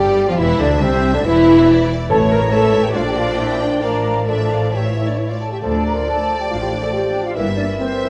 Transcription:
Already playing: G1 G2 G3 G4 D5 G5
0.28 F2 F3 F4 F5
0.38 E1 E2 E3 E4 E5
0.60 D2 D3 D4 D5
0.81 C2 C3 C4 C5
1.13 D2 D3 D4 D5
1.18 D4
1.24 E1 E2 E3 E4 E5
1.68 D5
2.09 A1 A2 E3 A3 E4 A4 C#5 A5
2.31 A#4 A#5
2.51 E3 A3 E4 A4 C#5 E5 A5
2.84 G4 G5
2.92 A#1 A#2 F3 D4 F4 D5 F5
3.06 G4 G5
3.16 F4 F5
3.36 E4 E5 G5
3.61 D4 D5
3.82 A1 A2 F3 D4 F4 A#4 D5 F5 A#5
4.27 F3 D4 F4 A4 D5 E5 A5
4.51 F5
4.72 E3 A3 E4 G4 C#5 E5 G5
4.84 F4 F5
4.95 E4 E5
5.07 D4 D5
5.16 E4 C#5 E5
5.29 F4 D5 F5
5.41 A4 A5
5.52 G4 E5 G5
5.62 D2 F3 A3 A4 D5 A5
5.74 A3
5.85 D4 A#4 A#5
5.96 F4
6.07 D4 A4 A5
6.17 A3
6.27 F3
6.38 A3 G4 G5
6.50 A1 A2 D4 F4 F5
6.61 F4 G4 G5
6.72 D4
6.83 A3 A4 A5
6.93 F3 G4 G5
7.03 A3
7.15 D4
7.24 F4 F5
7.35 G1 G2 E3 A#3 E4 A#4 E5
7.47 G3
7.57 A#3 D4 D5
7.69 E4
7.77 A#3 C4 C5 E5
7.91 G3
8.02 E3

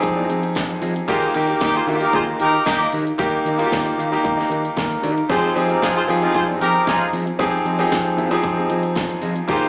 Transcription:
Already playing: F3 C4 D#4 G4 G#4
0.01 F2, muted clean electric guitar stroke, kick, closed hi-hat
0.16 C4 F4 G#4 D#5
0.28 F3 C4 F4 G#4 D#5, closed hi-hat
0.43 muted clean electric guitar stroke, closed hi-hat
0.55 F2, muted clean electric guitar stroke, kick, snare, closed hi-hat
0.69 muted clean electric guitar stroke, closed hi-hat
0.81 F3 C4 F4 G#4 D#5, open hi-hat
0.96 muted clean electric guitar stroke, closed hi-hat
1.08 D#2 A#3 D#4 F4 G4 G#4 A#4 C5 D#5, kick, closed hi-hat
1.23 closed hi-hat
1.34 D#3 A#3 D#4 G4 A#4 D#5, closed hi-hat
1.47 D#4 G4 A#4 D#5, closed hi-hat
1.61 D#2 A#3 D#4 G4, muted clean electric guitar stroke, kick, snare, closed hi-hat
1.75 F4 G#4 C5, muted clean electric guitar stroke
1.87 D#3 A#3 D#4 F4 G4 A#4 F5, closed hi-hat
1.95 G4
2.00 D#4 G4 A#4 D#5, closed hi-hat
2.13 D#2 F4 G#4 C5, muted clean electric guitar stroke, kick, closed hi-hat
2.27 D#4 G4 A#4 D#5
2.39 D#3 D#4 G4 A#4 D#5, closed hi-hat
2.53 muted clean electric guitar stroke, closed hi-hat
2.65 D#2 A#3 D#4 G4, muted clean electric guitar stroke, kick, snare, closed hi-hat
2.81 muted clean electric guitar stroke, closed hi-hat
2.92 D#3 D#4 G4 A#4 D#5, open hi-hat
3.07 muted clean electric guitar stroke, closed hi-hat
3.18 D#2 A#3 D#4 G4 A#4 D#5, kick, closed hi-hat
3.45 D#3 D#4 G4 A#4 D#5, closed hi-hat
3.58 A#3 D#4 F4 G4 A#4 D#5, closed hi-hat
3.66 G4
3.72 D#2, kick, snare, closed hi-hat
3.86 muted clean electric guitar stroke, closed hi-hat
3.98 D#3 D#4 G4 A#4 F5, closed hi-hat
4.12 A#3 D#4 G4 A#4 D#5, closed hi-hat
4.24 D#2, muted clean electric guitar stroke, kick, closed hi-hat
4.37 D#4 G4 A#4 D#5, snare, closed hi-hat
4.50 D#3 D#4 G4 A#4 D#5, closed hi-hat
4.64 muted clean electric guitar stroke, closed hi-hat
4.76 D#2 A#4, muted clean electric guitar stroke, kick, snare, closed hi-hat
4.91 muted clean electric guitar stroke, closed hi-hat
5.02 D#3 D#4 G4 A#4 D#5, open hi-hat
5.16 muted clean electric guitar stroke, closed hi-hat
5.29 F2 F3 C4 D#4 F4 G4 G#4 C5 D#5, kick, closed hi-hat
5.45 closed hi-hat
5.55 F3 C4 D#4 F4 G4 G#4 D#5, closed hi-hat
5.69 C4 D#4 F4 G4 G#4 A#4 D#5, closed hi-hat
5.82 F2 D#4 F4 G#4, muted clean electric guitar stroke, kick, snare, closed hi-hat
5.96 F4 G#4 C5, muted clean electric guitar stroke
6.08 F3 C4 D#4 F4 G4 G#4 F5, closed hi-hat
6.22 C4 D#4 F4 G#4 D#5, closed hi-hat
6.34 F2 F4 G#4 C5, kick, closed hi-hat
6.48 C4 F4 G#4 D#5
6.60 F3 C4 D#4 F4 G4 G#4 A#4 D#5, closed hi-hat
6.75 muted clean electric guitar stroke, closed hi-hat
6.87 F2 D#4 F4 G#4, muted clean electric guitar stroke, kick, snare, closed hi-hat
7.01 muted clean electric guitar stroke, closed hi-hat
7.13 F3 C4 F4 G#4 D#5, open hi-hat
7.27 muted clean electric guitar stroke, closed hi-hat
7.39 F2 F3 C4 D#4 F4 G4 G#4 D#5, kick, closed hi-hat
7.54 closed hi-hat
7.65 F3 C4 F4 G#4 D#5, closed hi-hat
7.79 F3 C4 D#4 F4 G4 G#4 D#5, closed hi-hat
7.92 F2, kick, snare, closed hi-hat
8.06 muted clean electric guitar stroke
8.17 F3 C4 F4 G#4 F5, closed hi-hat
8.31 F3 C4 D#4 F4 G4 G#4 D#5, closed hi-hat
8.44 F2, kick, closed hi-hat
8.57 C4 F4 G#4 D#5
8.70 F3 C4 F4 G#4 D#5, closed hi-hat
8.83 muted clean electric guitar stroke, closed hi-hat
8.95 F2, muted clean electric guitar stroke, kick, snare, closed hi-hat
9.10 muted clean electric guitar stroke, closed hi-hat
9.22 F3 C4 F4 G#4 D#5, open hi-hat
9.36 muted clean electric guitar stroke, closed hi-hat
9.48 D#2 A#3 D#4 F4 G4 G#4 A#4 C5 D#5, kick, closed hi-hat
9.63 closed hi-hat

